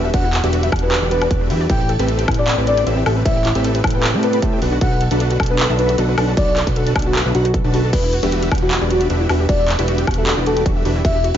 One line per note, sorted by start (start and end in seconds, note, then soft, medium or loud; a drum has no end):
0.00 0.12 E1 loud
0.00 0.11 D4 medium
0.00 0.11 F#4 medium
0.00 0.11 G4 medium
0.00 0.11 B4 medium
0.00 0.11 E5 medium
0.05 0.08 E5 medium
0.14 0.42 E1 loud
0.14 0.25 D4 medium
0.14 0.22 D4 medium
0.14 0.25 F#4 medium
0.14 0.25 G4 medium
0.14 0.25 B4 medium
0.14 0.25 E5 loud
0.14 0.36 F#5 loud
0.14 kick loud
0.14 closed hi-hat medium
0.14 crash medium
0.24 0.27 E4 medium
0.33 0.37 F#4 loud
0.33 clap medium
0.33 closed hi-hat medium
0.44 0.70 E1 loud
0.44 0.70 D4 medium
0.44 0.70 F#4 medium
0.44 0.51 G4 medium
0.44 0.70 G4 medium
0.44 0.70 B4 medium
0.44 0.70 E5 medium
0.44 closed hi-hat medium
0.53 0.61 F#4 medium
0.53 closed hi-hat medium
0.63 0.66 E5 medium
0.63 closed hi-hat medium
0.72 1.00 E1 medium
0.72 0.81 D4 medium
0.72 1.00 D4 medium
0.72 1.00 F#4 medium
0.72 1.00 G4 medium
0.72 1.00 B4 medium
0.72 1.00 F#5 medium
0.72 kick loud
0.72 closed hi-hat soft
0.72 high woodblock medium
0.76 closed hi-hat medium
0.79 0.86 E4 medium
0.79 0.99 B4 loud
0.79 closed hi-hat medium
0.92 0.95 F#4 loud
0.92 clap loud
0.92 closed hi-hat medium
1.02 1.29 E1 loud
1.02 1.29 D4 medium
1.02 1.29 F#4 medium
1.02 1.10 G4 medium
1.02 1.29 G4 medium
1.02 1.29 B4 medium
1.02 1.29 D5 loud
1.11 1.17 F#4 medium
1.11 1.28 B4 loud
1.11 closed hi-hat medium
1.21 1.26 F#4 medium
1.21 closed hi-hat medium
1.21 high woodblock medium
1.31 1.51 E1 loud
1.31 1.48 D4 loud
1.31 1.48 F#4 medium
1.31 1.48 G4 medium
1.31 1.48 B4 medium
1.31 1.34 D5 medium
1.31 1.48 E5 loud
1.31 kick loud
1.31 closed hi-hat medium
1.41 1.46 D4 medium
1.50 1.68 E2 loud
1.50 1.67 D4 medium
1.50 1.56 E4 medium
1.50 1.67 F#4 medium
1.50 1.67 G4 medium
1.50 1.67 B4 medium
1.50 1.67 E5 medium
1.50 open hi-hat medium
1.61 1.66 D5 medium
1.69 1.97 A1 loud
1.69 1.80 C4 medium
1.69 1.78 E4 medium
1.69 1.80 G4 medium
1.69 1.80 A4 medium
1.69 1.80 B4 medium
1.69 1.80 E5 loud
1.69 1.92 G5 loud
1.69 kick loud
1.69 closed hi-hat medium
1.69 crash soft
1.80 1.83 G4 medium
1.89 1.92 A4 loud
1.89 closed hi-hat medium
1.99 2.26 A1 medium
1.99 2.26 C4 medium
1.99 2.26 G4 medium
1.99 2.26 A4 medium
1.99 2.07 B4 medium
1.99 2.26 B4 medium
1.99 2.26 E5 medium
1.99 closed hi-hat medium
2.08 2.17 A4 medium
2.08 closed hi-hat medium
2.19 2.22 G5 medium
2.19 closed hi-hat medium
2.28 2.56 A1 medium
2.28 2.55 C4 medium
2.28 2.36 E4 medium
2.28 kick loud
2.28 closed hi-hat soft
2.28 high woodblock medium
2.31 closed hi-hat medium
2.34 closed hi-hat medium
2.38 2.41 G4 medium
2.38 2.55 D5 loud
2.48 2.51 A4 loud
2.48 clap loud
2.48 closed hi-hat medium
2.58 2.85 A1 medium
2.58 2.84 C4 medium
2.58 2.84 G4 medium
2.58 2.84 A4 medium
2.58 2.65 B4 medium
2.58 2.84 B4 medium
2.58 2.84 D5 medium
2.67 2.75 A4 medium
2.67 2.84 D5 loud
2.67 closed hi-hat medium
2.77 2.80 G5 medium
2.77 closed hi-hat medium
2.86 3.04 A1 loud
2.86 3.04 C4 loud
2.86 2.95 E4 medium
2.86 3.04 G4 medium
2.86 3.04 A4 medium
2.86 3.04 B4 medium
2.86 3.04 E5 loud
2.86 closed hi-hat medium
2.97 3.00 G4 medium
3.06 3.24 A1 loud
3.06 3.23 C4 medium
3.06 3.23 G4 medium
3.06 3.23 A4 medium
3.06 3.09 A4 loud
3.06 3.23 B4 medium
3.06 3.23 E5 medium
3.06 open hi-hat medium
3.06 high woodblock medium
3.16 3.24 B4 medium
3.25 3.53 A1 loud
3.25 3.36 C4 medium
3.25 3.36 A4 medium
3.25 3.34 A4 medium
3.25 3.36 B4 medium
3.25 3.48 E5 loud
3.25 3.36 E5 loud
3.25 kick loud
3.25 closed hi-hat medium
3.25 crash soft
3.36 3.39 G5 medium
3.45 3.54 E4 medium
3.45 clap medium
3.45 closed hi-hat medium
3.55 3.82 A1 loud
3.55 3.82 C4 medium
3.55 3.82 G4 medium
3.55 3.58 G4 medium
3.55 3.82 A4 medium
3.55 3.82 B4 medium
3.55 3.82 E5 medium
3.55 closed hi-hat medium
3.64 3.68 A4 loud
3.64 closed hi-hat medium
3.75 3.82 B4 medium
3.75 closed hi-hat medium
3.84 3.92 A4 medium
3.84 kick loud
3.84 closed hi-hat medium
3.84 high woodblock medium
3.87 closed hi-hat medium
3.90 4.10 B4 medium
3.90 3.97 G5 medium
3.90 closed hi-hat medium
4.03 4.12 E4 medium
4.03 clap loud
4.03 closed hi-hat medium
4.14 4.41 A2 loud
4.14 4.40 C4 medium
4.14 4.40 G4 medium
4.14 4.17 G4 medium
4.14 4.40 A4 medium
4.14 4.40 B4 medium
4.14 4.40 D5 medium
4.23 4.26 A4 loud
4.23 4.39 B4 loud
4.23 closed hi-hat medium
4.33 4.41 B4 medium
4.33 closed hi-hat medium
4.42 4.60 A2 loud
4.42 4.60 C4 loud
4.42 4.60 G4 medium
4.42 4.60 A4 medium
4.42 4.51 A4 medium
4.42 4.60 B4 medium
4.42 4.60 E5 loud
4.42 kick loud
4.42 closed hi-hat medium
4.53 4.56 G5 medium
4.62 4.80 B1 loud
4.62 4.78 D4 medium
4.62 4.70 D4 medium
4.62 4.78 F#4 medium
4.62 4.78 A4 medium
4.62 4.78 B4 medium
4.62 4.78 F#5 medium
4.62 open hi-hat loud
4.72 4.75 F#4 medium
4.81 5.09 B1 loud
4.81 4.92 D4 medium
4.81 4.92 F#4 medium
4.81 4.92 A4 medium
4.81 4.85 A4 loud
4.81 4.92 F#5 loud
4.81 5.03 F#5 loud
4.81 kick loud
4.81 closed hi-hat medium
4.81 crash soft
4.92 4.99 B4 medium
5.01 5.09 A4 medium
5.01 closed hi-hat medium
5.11 5.38 B1 loud
5.11 5.38 D4 medium
5.11 5.38 F#4 medium
5.11 5.38 A4 medium
5.11 5.38 B4 medium
5.11 5.38 F#5 medium
5.11 5.14 A5 medium
5.11 closed hi-hat medium
5.20 5.29 D4 medium
5.20 closed hi-hat medium
5.31 5.34 F#4 medium
5.31 closed hi-hat medium
5.40 5.67 D4 medium
5.40 5.67 F#4 medium
5.40 5.43 A4 loud
5.40 kick loud
5.40 closed hi-hat medium
5.40 high woodblock medium
5.43 closed hi-hat medium
5.46 5.66 B4 loud
5.46 closed hi-hat medium
5.50 5.58 B4 medium
5.59 5.68 A4 medium
5.59 clap loud
5.59 closed hi-hat medium
5.69 5.96 B1 loud
5.69 5.96 D4 medium
5.69 5.96 F#4 medium
5.69 5.96 A4 medium
5.69 5.96 B4 medium
5.69 5.96 E5 medium
5.69 5.73 A5 medium
5.79 5.87 D4 medium
5.79 5.95 B4 loud
5.79 closed hi-hat medium
5.89 5.92 F#4 medium
5.89 closed hi-hat medium
5.98 6.16 B1 loud
5.98 6.15 D4 loud
5.98 6.15 F#4 loud
5.98 6.15 A4 medium
5.98 6.02 A4 loud
5.98 6.15 B4 medium
5.98 6.15 F#5 loud
5.98 closed hi-hat medium
6.09 6.16 B4 medium
6.18 6.35 B1 loud
6.18 6.34 D4 medium
6.18 6.34 F#4 medium
6.18 6.34 A4 medium
6.18 6.26 A4 medium
6.18 6.34 B4 medium
6.18 6.34 F#5 medium
6.18 open hi-hat medium
6.18 high woodblock medium
6.28 6.31 A5 medium
6.37 6.65 B1 loud
6.37 6.48 D4 medium
6.37 6.46 D4 medium
6.37 6.48 F#4 medium
6.37 6.48 B4 medium
6.37 6.59 D5 loud
6.37 6.48 F#5 loud
6.37 kick loud
6.37 closed hi-hat medium
6.37 crash soft
6.48 6.51 F#4 medium
6.57 6.60 A4 loud
6.57 clap medium
6.57 closed hi-hat medium
6.67 6.94 B1 loud
6.67 6.93 D4 medium
6.67 6.93 F#4 medium
6.67 6.93 A4 medium
6.67 6.93 B4 medium
6.67 6.75 B4 medium
6.67 6.93 F#5 medium
6.67 kick medium
6.67 closed hi-hat medium
6.76 6.85 A4 medium
6.76 closed hi-hat medium
6.87 6.90 A5 medium
6.87 closed hi-hat medium
6.96 7.23 B1 medium
6.96 7.04 D4 medium
6.96 7.23 F#4 medium
6.96 7.23 B4 medium
6.96 kick loud
6.96 closed hi-hat medium
6.96 high woodblock medium
6.99 closed hi-hat medium
7.02 7.22 F#4 loud
7.02 7.09 F#4 medium
7.02 closed hi-hat medium
7.15 7.19 A4 loud
7.15 clap loud
7.15 closed hi-hat medium
7.25 7.33 B1 loud
7.25 7.33 D4 medium
7.25 7.33 F#4 medium
7.25 7.33 A4 medium
7.25 7.33 B4 medium
7.25 7.33 E5 medium
7.34 7.62 B1 loud
7.34 7.45 D4 medium
7.34 7.45 F#4 medium
7.34 7.51 F#4 loud
7.34 7.45 A4 medium
7.34 7.45 B4 medium
7.34 7.45 F#5 medium
7.34 7.40 F#5 medium
7.34 closed hi-hat medium
7.45 7.48 F#4 medium
7.45 closed hi-hat medium
7.54 7.58 A4 medium
7.54 kick loud
7.54 closed hi-hat medium
7.64 7.95 B1 loud
7.64 7.91 D4 medium
7.64 7.72 D4 medium
7.64 7.91 F#4 medium
7.64 7.91 A4 medium
7.64 7.91 B4 medium
7.64 7.91 A5 loud
7.74 7.77 F#4 medium
7.74 open hi-hat medium
7.84 7.92 A4 medium
7.93 8.21 E1 loud
7.93 8.02 D4 medium
7.93 8.04 F#4 medium
7.93 8.04 G4 medium
7.93 8.15 B4 loud
7.93 8.04 B4 medium
7.93 kick loud
7.93 closed hi-hat medium
7.93 crash medium
7.93 crash soft
8.04 8.07 E4 medium
8.13 8.16 F#4 loud
8.13 closed hi-hat medium
8.23 8.50 E1 medium
8.23 8.49 D4 medium
8.23 8.49 F#4 medium
8.23 8.49 G4 medium
8.23 8.31 G4 medium
8.23 8.49 B4 medium
8.23 8.49 E5 medium
8.23 closed hi-hat medium
8.32 8.41 F#4 medium
8.32 closed hi-hat medium
8.43 8.46 E5 medium
8.43 closed hi-hat medium
8.52 8.79 E1 medium
8.52 8.60 D4 medium
8.52 kick loud
8.52 closed hi-hat medium
8.52 high woodblock medium
8.55 closed hi-hat medium
8.58 8.78 F#4 medium
8.58 closed hi-hat medium
8.62 8.65 E4 medium
8.71 8.74 F#4 loud
8.71 clap loud
8.71 closed hi-hat medium
8.81 9.08 E1 loud
8.81 9.08 D4 medium
8.81 9.08 F#4 medium
8.81 9.08 G4 medium
8.81 8.89 G4 medium
8.81 9.08 B4 medium
8.81 9.08 D5 medium
8.90 9.07 F#4 medium
8.90 8.99 F#4 medium
8.90 closed hi-hat medium
9.01 9.04 E5 medium
9.01 closed hi-hat medium
9.10 9.28 E1 loud
9.10 9.27 D4 medium
9.10 9.18 D4 medium
9.10 9.27 F#4 loud
9.10 9.27 G4 medium
9.10 9.27 B4 medium
9.10 9.27 E5 loud
9.10 closed hi-hat medium
9.21 9.23 E4 medium
9.29 9.47 E1 loud
9.29 9.46 D4 medium
9.29 9.46 F#4 medium
9.29 9.33 F#4 loud
9.29 9.46 G4 medium
9.29 9.46 B4 medium
9.29 9.46 E5 medium
9.29 open hi-hat medium
9.29 high woodblock medium
9.40 9.47 G4 medium
9.49 9.77 E1 loud
9.49 9.57 F#4 medium
9.49 9.71 D5 loud
9.49 kick loud
9.49 closed hi-hat medium
9.49 crash soft
9.59 9.62 E5 medium
9.68 9.77 D4 medium
9.68 clap medium
9.68 closed hi-hat medium
9.79 10.06 E1 loud
9.79 10.05 D4 medium
9.79 9.82 E4 medium
9.79 10.05 F#4 medium
9.79 10.05 G4 medium
9.79 10.05 B4 medium
9.79 10.05 E5 medium
9.79 closed hi-hat medium
9.88 9.91 F#4 loud
9.88 closed hi-hat medium
9.98 10.06 G4 medium
9.98 closed hi-hat medium
10.07 10.35 E1 medium
10.07 10.35 D4 medium
10.07 10.35 F#4 medium
10.07 10.16 F#4 medium
10.07 kick loud
10.07 closed hi-hat medium
10.07 high woodblock medium
10.11 closed hi-hat medium
10.14 10.34 A4 loud
10.14 closed hi-hat medium
10.18 10.21 E5 medium
10.27 10.35 D4 medium
10.27 clap loud
10.27 closed hi-hat medium
10.37 10.64 E1 loud
10.37 10.64 D4 medium
10.37 10.40 E4 medium
10.37 10.64 F#4 medium
10.37 10.64 G4 medium
10.37 10.64 B4 medium
10.37 10.64 D5 medium
10.46 10.50 F#4 loud
10.46 10.63 A4 loud
10.46 closed hi-hat medium
10.57 10.64 G4 medium
10.57 closed hi-hat medium
10.66 10.83 E1 loud
10.66 10.83 D4 loud
10.66 10.83 F#4 medium
10.66 10.74 F#4 medium
10.66 10.83 G4 medium
10.66 10.83 B4 medium
10.66 10.83 E5 loud
10.66 kick loud
10.66 closed hi-hat medium
10.76 10.79 E5 medium
10.85 11.03 E1 loud
10.85 11.02 D4 medium
10.85 10.94 D4 medium
10.85 11.02 F#4 medium
10.85 11.02 G4 medium
10.85 11.02 B4 medium
10.85 11.02 E5 medium
10.85 open hi-hat medium
10.96 10.99 E4 medium
11.05 11.08 F#4 loud
11.05 11.15 G4 medium
11.05 11.27 E5 loud
11.05 kick loud
11.05 closed hi-hat medium
11.05 crash medium
11.15 11.22 G4 medium
11.24 11.32 F#4 medium
11.24 closed hi-hat medium